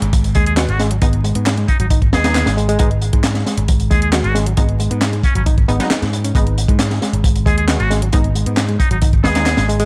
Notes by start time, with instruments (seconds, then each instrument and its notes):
Already playing: reed electric piano G#3
0.02 picked electric bass G#1, closed hi-hat
0.13 kick, closed hi-hat
0.24 closed hi-hat
0.35 picked electric bass D#2, reed electric piano G#3, muted trumpet G#4, kick, closed hi-hat
0.46 muted trumpet G#4, closed hi-hat
0.57 synth stab G#3 B3 F#4, snare, clap, closed hi-hat
0.69 picked electric bass G#1, muted trumpet F#4, closed hi-hat
0.79 reed electric piano G#3, snare, closed hi-hat
0.91 reed electric piano F#3, closed hi-hat
1.02 picked electric bass G#1, synth stab G#3 B3 D#4, kick, closed hi-hat
1.13 closed hi-hat
1.24 reed electric piano G#3, closed hi-hat
1.35 picked electric bass G#2, reed electric piano B3, closed hi-hat
1.46 snare, clap, closed hi-hat
1.58 reed electric piano G#3, closed hi-hat
1.68 muted trumpet D#4, kick, closed hi-hat
1.80 picked electric bass G#1, reed electric piano F#3, muted trumpet D#4, closed hi-hat
1.90 reed electric piano D#4, kick, closed hi-hat
2.02 kick, closed hi-hat
2.13 picked electric bass D#2, synth stab G#3 B3 D#4, muted trumpet G#4, snare, closed hi-hat
2.24 synth stab G#3 B3 D#4, snare, closed hi-hat
2.35 reed electric piano B3, snare, clap, closed hi-hat
2.46 picked electric bass G#1, reed electric piano G#3, snare, closed hi-hat
2.57 reed electric piano G#3, closed hi-hat
2.69 reed electric piano G#3, closed hi-hat
2.79 picked electric bass G#1, synth stab G#3 B3 D#4, reed electric piano G#3, kick, closed hi-hat
2.91 closed hi-hat
3.02 closed hi-hat
3.13 picked electric bass G#2, reed electric piano G#3, kick, closed hi-hat
3.24 snare, clap, closed hi-hat
3.35 snare, closed hi-hat
3.46 reed electric piano G#3, snare, closed hi-hat
3.58 picked electric bass G#1, closed hi-hat
3.68 kick, closed hi-hat
3.80 closed hi-hat
3.91 picked electric bass D#2, reed electric piano G#3, muted trumpet G#4, kick, closed hi-hat
4.02 muted trumpet G#4, closed hi-hat
4.12 synth stab G#3 B3 F#4, snare, clap, closed hi-hat
4.24 picked electric bass G#1, muted trumpet F#4, closed hi-hat
4.35 reed electric piano G#3, snare, closed hi-hat
4.46 reed electric piano F#3, closed hi-hat
4.57 picked electric bass G#1, synth stab G#3 B3 D#4, kick, closed hi-hat
4.69 closed hi-hat
4.79 reed electric piano G#3, closed hi-hat
4.91 picked electric bass G#2, reed electric piano B3, closed hi-hat
5.01 snare, clap, closed hi-hat
5.13 reed electric piano G#3, closed hi-hat
5.24 muted trumpet C#4, kick, closed hi-hat
5.35 picked electric bass G#1, reed electric piano F#3, muted trumpet C#4, closed hi-hat
5.46 reed electric piano D#4, kick, closed hi-hat
5.58 kick, closed hi-hat
5.68 picked electric bass G#1, synth stab G#3 B3 D#4, reed electric piano B3, closed hi-hat
5.80 reed electric piano F#3, synth stab G#3 B3 D#4, snare, closed hi-hat
5.90 snare, clap, closed hi-hat
6.02 picked electric bass G#2, snare, closed hi-hat
6.13 closed hi-hat
6.24 reed electric piano C#4, closed hi-hat
6.35 picked electric bass G#1, reed electric piano G#3, synth stab G#3 B3 D#4, kick, closed hi-hat
6.47 closed hi-hat
6.58 closed hi-hat
6.68 picked electric bass G#2, reed electric piano G#3, kick, closed hi-hat
6.79 snare, clap, closed hi-hat
6.91 snare, closed hi-hat
7.02 reed electric piano G#3, snare, closed hi-hat
7.13 picked electric bass G#1, closed hi-hat
7.24 kick, closed hi-hat
7.36 closed hi-hat
7.46 picked electric bass D#2, reed electric piano G#3, muted trumpet G#4, kick, closed hi-hat
7.57 muted trumpet G#4, closed hi-hat
7.68 synth stab G#3 B3 F#4, snare, clap, closed hi-hat
7.79 picked electric bass G#1, muted trumpet F#4, closed hi-hat
7.91 reed electric piano G#3, snare, closed hi-hat
8.02 reed electric piano F#3, closed hi-hat
8.13 picked electric bass G#1, synth stab G#3 B3 D#4, kick, closed hi-hat
8.24 closed hi-hat
8.35 reed electric piano G#3, closed hi-hat
8.46 picked electric bass G#2, reed electric piano B3, closed hi-hat
8.57 snare, clap, closed hi-hat
8.69 reed electric piano G#3, closed hi-hat
8.79 muted trumpet D#4, kick, closed hi-hat
8.91 picked electric bass G#1, reed electric piano F#3, muted trumpet D#4, closed hi-hat
9.02 reed electric piano D#4, kick, closed hi-hat
9.13 kick, closed hi-hat
9.24 picked electric bass D#2, synth stab G#3 B3 D#4, muted trumpet G#4, snare, closed hi-hat
9.35 synth stab G#3 B3 D#4, snare, closed hi-hat
9.46 reed electric piano B3, snare, clap, closed hi-hat
9.57 picked electric bass G#1, reed electric piano G#3, snare, closed hi-hat
9.68 reed electric piano G#3, closed hi-hat
9.80 reed electric piano G#3, closed hi-hat